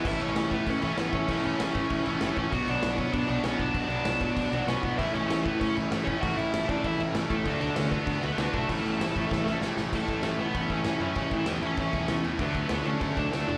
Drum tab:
CC |xxxxxxxx|xxxxxxxx|xxxxxxxx|xxxxxxxx|
SD |--o---o-|--o---o-|--o---o-|--o---o-|
BD |o--oo--o|o--oo--o|o--oo--o|o--oo--o|

CC |xxxxxxxx|xxxxxxxx|xxxxxxxx|xxxx----|
SD |--o---o-|--o---o-|--o---o-|--o-oooo|
BD |o--oo--o|o--oo--o|o--oo--o|o--oo---|

CC |xxxxxxxx|xxxxxxxx|xxxxxxxx|
SD |--o---o-|--o---o-|--o---o-|
BD |oo--oo--|oo--oo--|oo--oo--|